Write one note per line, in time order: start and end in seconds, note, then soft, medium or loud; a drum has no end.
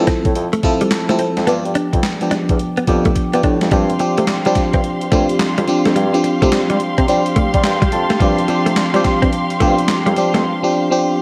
0.00 0.63 F3 medium
0.00 0.64 C4 medium
0.00 0.64 E4 medium
0.00 0.65 A4 medium
0.07 0.18 C4 medium
0.07 kick medium
0.07 snare medium
0.07 closed hi-hat medium
0.25 0.33 A2 medium
0.25 kick medium
0.25 closed hi-hat medium
0.35 0.49 F2 medium
0.35 closed hi-hat medium
0.53 0.59 A3 medium
0.53 closed hi-hat soft
0.63 0.99 F3 medium
0.63 0.77 F3 loud
0.63 1.00 C4 medium
0.63 1.00 E4 medium
0.63 1.00 A4 loud
0.63 muted clean electric guitar stroke soft
0.63 kick medium
0.63 closed hi-hat medium
0.81 0.87 G3 medium
0.81 closed hi-hat medium
0.91 0.98 C3 soft
0.91 muted clean electric guitar stroke soft
0.91 snare loud
0.91 clap loud
0.91 closed hi-hat medium
1.09 1.17 C3 medium
1.09 1.42 F3 medium
1.09 1.15 A3 medium
1.09 1.42 C4 medium
1.09 1.42 E4 medium
1.09 1.42 A4 medium
1.09 closed hi-hat medium
1.19 1.30 C4 medium
1.19 closed hi-hat medium
1.37 1.45 F2 medium
1.37 snare medium
1.37 closed hi-hat soft
1.47 1.61 G2 loud
1.47 2.05 F3 medium
1.47 1.58 B3 medium
1.47 2.05 B3 medium
1.47 2.05 D4 medium
1.47 2.06 G4 medium
1.47 closed hi-hat medium
1.65 1.73 G2 medium
1.65 closed hi-hat soft
1.75 1.86 D4 medium
1.75 closed hi-hat medium
1.93 2.01 F2 medium
1.93 muted clean electric guitar stroke soft
1.93 kick medium
1.93 closed hi-hat medium
2.03 snare loud
2.03 clap medium
2.03 closed hi-hat medium
2.21 2.78 F3 medium
2.21 2.79 B3 medium
2.21 2.79 D4 medium
2.21 2.79 G4 medium
2.21 closed hi-hat soft
2.31 2.39 E2 soft
2.31 2.42 D4 medium
2.31 snare medium
2.31 closed hi-hat medium
2.49 2.57 E2 medium
2.49 kick medium
2.49 closed hi-hat medium
2.59 closed hi-hat medium
2.77 2.84 B3 medium
2.77 closed hi-hat soft
2.87 3.09 F2 loud
2.87 3.24 F3 medium
2.87 3.24 B3 medium
2.87 3.24 D4 medium
2.87 3.24 G4 loud
2.87 muted clean electric guitar stroke soft
2.87 kick medium
2.87 closed hi-hat medium
3.05 3.12 A3 medium
3.05 kick medium
3.05 closed hi-hat medium
3.15 muted clean electric guitar stroke soft
3.15 kick medium
3.15 closed hi-hat medium
3.33 3.41 G2 medium
3.33 3.66 F3 medium
3.33 3.40 B3 medium
3.33 3.66 B3 medium
3.33 3.67 D4 medium
3.33 3.67 G4 medium
3.33 closed hi-hat medium
3.43 3.57 A2 medium
3.43 3.55 D4 medium
3.43 kick medium
3.43 closed hi-hat medium
3.61 3.69 F2 medium
3.61 snare medium
3.61 closed hi-hat medium
3.71 3.93 G2 loud
3.71 3.96 F3 medium
3.71 3.83 G3 medium
3.71 3.96 C4 medium
3.71 3.96 D4 medium
3.71 11.22 G4 medium
3.71 3.97 G4 medium
3.71 11.22 F5 medium
3.71 11.22 C6 medium
3.71 kick loud
3.71 closed hi-hat medium
3.90 closed hi-hat soft
3.99 4.36 F3 medium
3.99 4.36 C4 medium
3.99 4.36 D4 medium
3.99 4.36 G4 loud
3.99 muted clean electric guitar stroke soft
3.99 closed hi-hat medium
4.18 4.25 C3 medium
4.18 4.24 A3 medium
4.18 closed hi-hat medium
4.27 4.35 G3 soft
4.27 snare loud
4.27 clap medium
4.27 closed hi-hat medium
4.45 5.03 F3 medium
4.45 4.53 G3 loud
4.45 4.52 G3 medium
4.45 5.03 C4 medium
4.45 5.03 D4 medium
4.45 5.03 G4 loud
4.45 closed hi-hat soft
4.55 muted clean electric guitar stroke soft
4.55 kick medium
4.55 snare medium
4.55 closed hi-hat medium
4.73 4.81 G2 medium
4.73 4.80 C4 medium
4.73 kick medium
4.73 closed hi-hat medium
4.84 closed hi-hat medium
5.01 5.06 G2 soft
5.01 closed hi-hat soft
5.12 5.25 G2 medium
5.12 5.60 F3 medium
5.12 5.23 A3 medium
5.12 5.61 C4 medium
5.12 5.61 D4 medium
5.12 5.61 G4 medium
5.12 kick medium
5.12 closed hi-hat medium
5.29 closed hi-hat medium
5.39 5.47 F2 soft
5.39 snare loud
5.39 clap loud
5.39 closed hi-hat medium
5.58 5.65 F2 medium
5.58 5.64 G3 medium
5.58 closed hi-hat medium
5.67 6.04 F3 medium
5.67 6.04 C4 medium
5.67 6.04 D4 medium
5.67 6.04 G4 loud
5.67 muted clean electric guitar stroke soft
5.67 closed hi-hat medium
5.85 5.93 F2 medium
5.85 5.92 A3 medium
5.85 snare medium
5.85 closed hi-hat medium
5.96 6.17 G2 loud
5.96 6.07 G3 medium
5.96 closed hi-hat medium
6.13 6.35 F3 medium
6.13 6.35 C4 medium
6.13 6.36 D4 medium
6.13 6.36 G4 loud
6.13 closed hi-hat medium
6.24 muted clean electric guitar stroke soft
6.24 closed hi-hat medium
6.42 6.49 C3 medium
6.42 6.99 F3 medium
6.42 6.48 A3 medium
6.42 6.99 C4 medium
6.42 6.99 D4 medium
6.42 6.99 G4 loud
6.42 kick medium
6.42 closed hi-hat medium
6.52 6.59 G3 soft
6.52 snare loud
6.52 clap medium
6.52 closed hi-hat medium
6.70 6.76 G3 medium
6.70 6.78 G3 loud
6.70 closed hi-hat medium
6.80 muted clean electric guitar stroke soft
6.80 closed hi-hat medium
6.98 7.06 C3 medium
6.98 7.04 C4 medium
6.98 kick medium
6.98 closed hi-hat medium
7.08 8.02 F3 medium
7.08 7.21 G3 loud
7.08 8.02 C4 medium
7.08 8.02 D4 medium
7.08 8.02 G4 medium
7.08 closed hi-hat medium
7.26 closed hi-hat soft
7.36 7.43 G3 soft
7.36 7.47 A3 medium
7.36 7.63 F5 medium
7.36 kick medium
7.36 closed hi-hat medium
7.54 7.62 G3 loud
7.54 kick medium
7.54 closed hi-hat medium
7.64 7.77 G2 medium
7.64 7.91 G5 medium
7.64 snare loud
7.64 clap loud
7.64 closed hi-hat medium
7.82 7.88 G3 medium
7.82 kick loud
7.82 closed hi-hat medium
7.92 8.06 F2 medium
7.92 8.19 A5 medium
7.92 muted clean electric guitar stroke soft
7.92 closed hi-hat medium
8.10 8.16 A3 medium
8.10 snare medium
8.10 closed hi-hat medium
8.20 8.41 G2 medium
8.20 8.45 F3 medium
8.20 8.31 G3 medium
8.20 8.45 C4 medium
8.20 8.45 D4 medium
8.20 8.45 G4 loud
8.20 kick loud
8.20 closed hi-hat medium
8.38 closed hi-hat soft
8.48 8.85 F3 loud
8.48 8.85 C4 medium
8.48 8.85 D4 medium
8.48 8.85 G4 loud
8.48 muted clean electric guitar stroke soft
8.48 closed hi-hat medium
8.66 8.74 C3 medium
8.66 8.72 A3 medium
8.66 closed hi-hat medium
8.76 8.84 G3 soft
8.76 snare loud
8.76 clap medium
8.76 closed hi-hat medium
8.94 9.51 F3 medium
8.94 9.00 G3 medium
8.94 9.02 G3 loud
8.94 9.52 C4 medium
8.94 9.52 D4 medium
8.94 9.52 G4 loud
8.94 closed hi-hat soft
9.04 muted clean electric guitar stroke soft
9.04 kick medium
9.04 snare medium
9.04 closed hi-hat medium
9.22 9.30 G2 medium
9.22 9.28 C4 medium
9.22 kick medium
9.22 closed hi-hat medium
9.33 closed hi-hat medium
9.50 closed hi-hat soft
9.60 9.74 G2 medium
9.60 10.09 F3 loud
9.60 9.71 A3 medium
9.60 9.69 B3 medium
9.60 10.10 D4 medium
9.60 10.10 G4 loud
9.60 kick medium
9.60 closed hi-hat medium
9.67 10.13 C4 medium
9.78 closed hi-hat medium
9.88 9.96 F2 medium
9.88 snare loud
9.88 clap loud
9.88 closed hi-hat medium
10.06 10.14 F2 medium
10.06 10.12 G3 medium
10.06 closed hi-hat medium
10.16 10.53 F3 medium
10.16 10.53 C4 medium
10.16 10.53 D4 medium
10.16 10.53 G4 medium
10.16 muted clean electric guitar stroke soft
10.16 closed hi-hat medium
10.34 10.45 F2 medium
10.34 10.40 A3 medium
10.34 snare medium
10.34 closed hi-hat medium
10.63 10.84 F3 medium
10.63 10.84 C4 medium
10.63 10.85 D4 medium
10.63 10.85 G4 loud
10.91 11.22 F3 medium
10.91 11.22 C4 medium
10.91 11.22 D4 medium
10.91 11.22 G4 loud